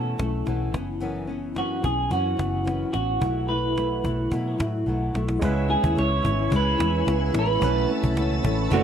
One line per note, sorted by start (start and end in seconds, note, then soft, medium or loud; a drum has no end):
0.00 0.14 B2 medium
0.00 0.19 B2 medium
0.00 0.20 E3 medium
0.00 0.19 A3 medium
0.00 0.17 C#4 medium
0.00 0.72 A4 medium
0.18 0.42 B1 medium
0.18 0.46 E3 soft
0.18 0.47 A3 medium
0.18 0.46 C#4 soft
0.18 cajon bass medium
0.18 cajon slap medium
0.46 0.74 B1 medium
0.46 0.74 B2 medium
0.46 0.74 E3 medium
0.46 0.75 A3 medium
0.46 0.72 C#4 medium
0.46 cajon slap medium
0.74 1.62 F#1 medium
0.74 1.00 E3 soft
0.74 1.00 B3 medium
0.74 1.01 C#4 medium
0.74 cajon bass loud
0.74 cajon slap medium
1.00 1.29 F#2 medium
1.00 1.29 E3 medium
1.00 1.28 B3 medium
1.00 1.26 C#4 medium
1.00 cajon slap soft
1.27 1.55 E3 soft
1.27 1.56 B3 medium
1.27 1.56 C#4 medium
1.27 cajon slap soft
1.55 1.84 F#2 soft
1.55 1.84 E3 medium
1.55 1.83 B3 medium
1.55 1.81 C#4 medium
1.55 1.84 F#4 medium
1.55 cajon slap medium
1.83 2.06 B1 medium
1.83 2.10 E3 soft
1.83 2.11 B3 soft
1.83 2.11 C#4 soft
1.83 2.11 G#4 medium
1.83 cajon bass medium
2.10 2.33 F#2 medium
2.10 2.39 F#2 medium
2.10 2.38 E3 medium
2.10 2.37 B3 medium
2.10 2.36 C#4 medium
2.10 2.92 F#4 medium
2.10 cajon bass medium
2.37 2.83 F#1 medium
2.37 2.64 E3 soft
2.37 2.65 B3 soft
2.37 2.66 C#4 soft
2.37 cajon bass medium
2.37 cajon slap medium
2.64 2.93 F#2 medium
2.64 2.94 E3 medium
2.64 2.93 B3 soft
2.64 2.92 C#4 medium
2.64 cajon slap medium
2.93 3.17 A1 medium
2.93 3.21 E3 soft
2.93 3.22 B3 soft
2.93 3.22 C#4 soft
2.93 3.48 F#4 medium
2.93 cajon slap medium
3.21 4.00 B1 loud
3.21 3.49 B2 medium
3.21 3.49 F#3 medium
3.21 3.48 A3 medium
3.21 3.47 E4 medium
3.21 cajon bass medium
3.48 3.76 F#3 soft
3.48 3.77 A3 soft
3.48 3.76 E4 medium
3.48 4.55 B4 medium
3.48 cajon slap soft
3.76 4.04 B2 medium
3.76 4.05 F#3 medium
3.76 4.05 A3 medium
3.76 4.03 E4 medium
3.76 cajon slap medium
4.04 4.26 B1 medium
4.04 4.31 F#3 soft
4.04 4.31 A3 soft
4.04 4.32 E4 medium
4.04 cajon bass medium
4.31 4.59 B2 medium
4.31 4.54 B2 medium
4.31 4.60 F#3 medium
4.31 4.59 A3 medium
4.31 4.57 E4 medium
4.31 cajon bass medium
4.58 4.82 A2 medium
4.58 4.86 F#3 soft
4.58 4.87 A3 medium
4.58 4.87 E4 medium
4.58 cajon bass medium
4.58 cajon slap loud
4.86 5.09 B1 medium
4.86 5.14 B2 medium
4.86 5.15 F#3 medium
4.86 5.15 A3 medium
4.86 5.13 E4 medium
4.86 cajon slap soft
5.14 5.37 B1 medium
5.14 5.42 F#3 soft
5.14 5.43 A3 medium
5.14 5.42 E4 medium
5.14 cajon slap medium
5.28 cajon slap medium
5.39 5.75 C#2 loud
5.39 5.69 C#3 medium
5.39 7.57 G#3 medium
5.39 5.70 G#3 medium
5.39 5.69 B3 medium
5.39 7.58 C#4 medium
5.39 7.58 E4 medium
5.39 8.84 C#5 medium
5.39 7.60 G#5 medium
5.39 8.84 B5 medium
5.39 8.84 E6 medium
5.39 cajon bass loud
5.44 5.68 E4 medium
5.44 7.59 B4 medium
5.69 5.95 G#3 soft
5.69 5.96 B3 medium
5.69 5.97 E4 medium
5.69 5.98 G#4 medium
5.69 cajon slap soft
5.84 5.95 D#2 medium
5.84 cajon bass medium
5.95 6.19 C#2 loud
5.95 6.24 C#3 medium
5.95 6.24 G#3 medium
5.95 6.23 B3 medium
5.95 6.21 E4 medium
5.95 6.55 C#5 loud
5.95 cajon slap medium
6.10 cajon slap soft
6.22 6.47 G#1 medium
6.22 6.50 G#3 soft
6.22 6.51 B3 medium
6.22 6.51 E4 medium
6.22 cajon bass medium
6.39 cajon slap soft
6.50 6.74 C#2 medium
6.50 6.79 C#3 medium
6.50 6.79 G#3 medium
6.50 6.79 B3 medium
6.50 6.77 E4 medium
6.50 cajon bass medium
6.56 7.33 B4 loud
6.67 cajon slap soft
6.78 7.02 E2 medium
6.78 7.05 G#3 soft
6.78 7.06 B3 soft
6.78 7.06 E4 medium
6.78 cajon slap loud
6.96 cajon slap soft
7.05 7.29 C#2 loud
7.05 7.34 C#3 medium
7.05 7.34 G#3 medium
7.05 7.34 B3 medium
7.05 7.32 E4 medium
7.05 cajon slap medium
7.33 7.56 A1 medium
7.33 7.61 G#3 soft
7.33 7.61 B3 medium
7.33 7.61 E4 medium
7.33 cajon slap loud
7.39 7.88 B4 medium
7.49 cajon slap soft
7.60 7.84 B1 loud
7.60 7.89 B2 medium
7.60 7.89 E3 medium
7.60 8.84 A3 medium
7.60 7.89 A3 medium
7.60 8.84 C#4 medium
7.60 7.87 C#4 medium
7.60 8.84 E4 medium
7.60 8.84 A5 medium
7.60 cajon bass loud
7.65 8.84 B4 medium
7.88 8.16 E3 soft
7.88 8.16 A3 medium
7.88 8.16 C#4 medium
8.03 8.16 B1 loud
8.03 cajon bass medium
8.16 8.38 C#2 loud
8.16 8.44 B2 medium
8.16 8.45 E3 medium
8.16 8.44 A3 medium
8.16 8.42 C#4 medium
8.16 cajon slap medium
8.43 8.66 A1 medium
8.43 8.70 E3 medium
8.43 8.70 A3 medium
8.43 8.71 C#4 medium
8.43 cajon bass loud
8.70 8.84 F#1 loud
8.70 8.84 B2 loud
8.70 8.84 E3 medium
8.70 8.84 A3 loud
8.70 8.84 C#4 medium
8.70 8.84 F#4 medium
8.70 cajon bass medium